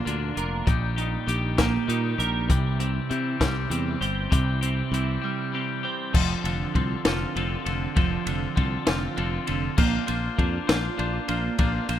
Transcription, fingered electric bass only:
0.06 D2
0.37 F1
0.67 A#1
1.27 A#1
1.88 A#2
2.19 A#1
2.50 C2
3.11 C3
3.41 C2
3.70 E2
4.01 G1
4.32 C2
4.92 C2
6.14 F1
6.44 F1
6.75 C2
7.05 F1
7.36 F1
7.66 F1
7.97 F1
8.27 F1
8.57 C2
8.87 F1
9.18 F1
9.49 F1
9.78 A#1
10.09 A#1
10.38 F2
10.69 A#1
10.99 A#1
11.29 A#1
11.59 A#1
11.89 A#1

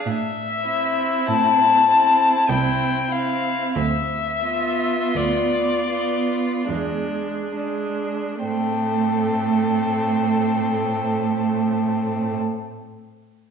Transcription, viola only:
0.66 C4
1.89 C4
2.51 C4
3.13 C4
4.44 B3
5.90 B3
6.69 G#3
7.56 G#3
8.44 A3

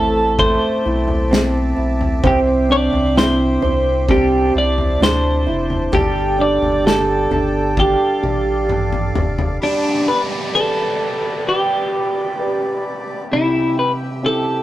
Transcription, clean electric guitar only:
Already playing: A4
0.39 C5
2.27 G4
2.72 D5
3.18 C5
4.11 G4
4.58 D5
5.03 C5
5.95 G4
6.41 D5
6.87 A4
7.80 G4
9.63 D4
10.08 B4
10.55 A4
11.49 G4
13.33 E4
13.79 B4
14.26 A4

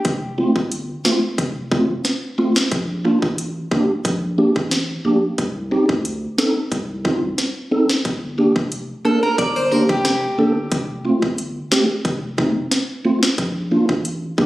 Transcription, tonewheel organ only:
0.38 A3 C4 F4
1.05 A3 C4 F4
1.71 A3 C4 F4
2.38 A3 C4 F4
3.05 A#3 D4 F4
3.71 A#3 D4 G4
4.38 A#3 D4 G4
5.05 A#3 D4 G4
5.71 C4 D#4 G4
6.38 C4 D#4 A4
7.05 C4 D#4 F4
7.71 C4 D#4 A4
8.38 A#3 D4 G4
9.05 A#3 D4 A#4
9.71 A#3 D4 G4
10.38 A#3 D4 A4
11.05 A3 C4 F4
11.71 A3 C4 G4
12.38 A3 C4 D#4
13.05 A3 C4 F4
13.71 A#3 D4 F4
14.38 A#3 D4 G4

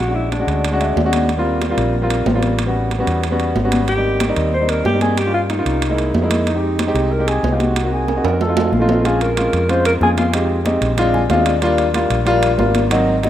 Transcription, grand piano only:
0.06 G#3 C#4 D4 F#4
0.39 G#3 C#4 D4 F#4
0.72 G#3 C#4 D4 F#4
0.81 E5
0.97 D5
1.04 G#3 C#4 D4 F#4
1.37 G3 A#3 C4 F4
1.69 G3 A#3 C4 F4
2.02 G3 A#3 C4 F4
2.34 G3 A#3 C4 F4
2.66 G3 B3 C#4 F#4
2.98 G3 B3 C#4 F#4
3.31 G3 B3 C#4 F#4
3.63 G3 B3 C#4 F#4
3.96 G3 A#3 C4 D#4
4.27 G3 A#3 C4 D#4
4.60 G3 A#3 C4 D#4
4.92 G3 A#3 C4 D#4
5.25 G3 A#3 C#4 F4
5.57 G3 A#3 C#4 F4
5.89 G#3 A#3 D#4 E4
6.22 G#3 A#3 D#4 E4
6.54 G#3 C4 D#4 G4
6.86 G#3 C4 D#4 G4
7.18 G#3 C4 D#4 G4
7.50 G#3 C4 D#4 G4
7.83 A#3 C4 D#4 F#4
8.15 A#3 C4 D#4 F#4
8.47 A3 C4 D#4 F4
8.80 A3 C4 D#4 F4
9.04 G#3 C4 C#4 F4
9.36 G#3 C4 C#4 F4
9.68 G#3 C4 C#4 F4
10.00 G#3 C4 C#4 F4
10.33 G#3 C4 D#4 G4
10.65 G#3 C4 D#4 G4
10.97 G#3 C4 D4 F4
11.14 G#5
11.30 G#3 C4 D4 F4 F5
11.47 D5
11.62 G3 A#3 D4 F4
11.93 G3 A#3 D4 F4
12.25 G3 A#3 D4 F4
12.57 G3 A#3 D4 F4
12.90 F#3 A#3 C4 D#4
13.23 F#3 A#3 C4 D#4

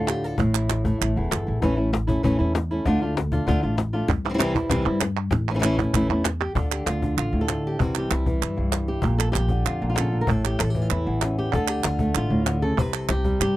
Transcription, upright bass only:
Already playing: D2
0.39 A1
1.01 A1
1.17 E1
1.32 G1
1.48 A1
1.63 A1
2.25 A1
2.40 E2
2.87 D2
3.48 D2
3.63 A1
4.09 C2
4.71 C2
4.86 G2
5.32 A1
5.94 A1
6.09 E2
6.55 D2
6.86 D2
7.17 A1
7.33 D2
7.80 C2
8.11 C2
8.42 G2
8.58 C2
9.05 A#1
9.35 A#1
9.66 F2
9.82 A#1
10.29 A1
10.60 A1
10.91 E2
11.07 A1
11.54 D2
11.84 D2
12.15 A1
12.30 D2
12.78 C2
13.09 C2
13.40 G2

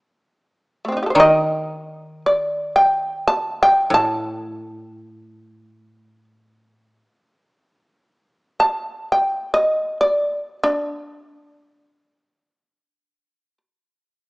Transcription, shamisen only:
0.85 A3 C4
0.92 D4
0.97 D#4
1.03 G4 A4
1.10 C5
1.15 D5
1.20 D#5
2.26 D5
2.76 G5
3.27 A5
3.63 G5
3.94 A5
8.60 A5
9.12 G5
9.54 D#5
10.01 D5
10.63 D4

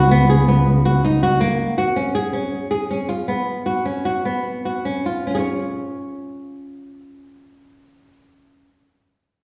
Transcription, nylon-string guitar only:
0.11 B3
0.30 G#4
0.48 B3
0.85 F#4
1.05 D#4
1.23 F#4
1.41 A#3
1.78 F#4
1.96 C#4
2.15 G#4
2.33 C#4
2.71 G#4
2.91 C#4
3.09 F4
3.28 B3
3.66 F#4
3.85 C#4
4.05 F#4
4.25 B3
4.65 F#4
4.85 C#4
5.06 F4
5.27 C#4 F4
5.35 G#4
5.39 C#5

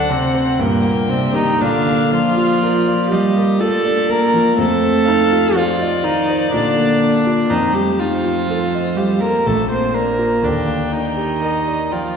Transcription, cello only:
Already playing: D3
0.09 C3
0.59 A#2
1.10 C3
1.35 D#3
1.60 D3
2.12 F3
3.11 G3
3.60 A3
4.08 A#3
4.57 A3
5.55 F3
6.03 D#3
6.51 D3
7.48 D#3
7.71 G3
7.96 F3
8.96 G3
9.21 A#3
9.46 A3
9.70 C4
9.94 A#3
10.42 D3
10.92 D#3
11.91 F3

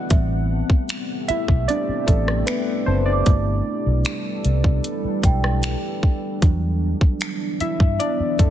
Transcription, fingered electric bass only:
0.11 A1
0.70 muted fingered electric bass stroke
1.29 muted fingered electric bass stroke
1.49 B1
1.89 muted fingered electric bass stroke
2.08 A1
2.87 F#1
3.27 G1
3.86 B1
4.45 C2
5.04 muted fingered electric bass stroke
5.23 B1
6.42 E2
7.01 muted fingered electric bass stroke
7.61 muted fingered electric bass stroke
7.80 G2
8.20 muted fingered electric bass stroke
8.39 F#2

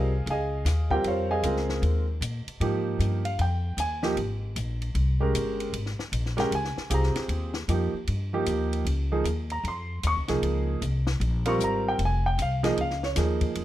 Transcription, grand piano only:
Already playing: G3 C4 F4 G#4 A#4 D#5 F5 G#5
0.30 G#4 D#5 F5 G#5
0.90 G3 C4 F4 G4 A#4 G5
1.07 F4 C5 C#5 F5
1.31 G#4 D#5 F5 G#5
1.44 G#3 C4 F4 A#4
2.61 F3 A#3 D#4 G4
3.25 F5
3.41 G5
3.80 G#5
4.03 F3 A#3 D#4 G4
5.20 G#3 C#4 G4 A#4
6.37 G#3 C#4 G4 A#4 G5
6.55 G#5
6.90 C4 F4 G4 G#4
6.94 A#5
7.69 F3 A#3 D#4 G4
8.33 F3 A#3 D#4 G4
9.12 F3 A#3 D#4 G#4
9.52 A#5
9.68 C6
10.07 C#6
10.29 F3 A#3 D#4 G#4
11.46 G3 C4 F4 A#4 C#6
11.64 A#5
11.88 G5
12.05 G#5
12.26 G5
12.42 F5
12.63 F3 A#3 D#4 G#4 D#5
12.81 F5
13.04 C#5
13.17 F3 A#3 D#4 G#4

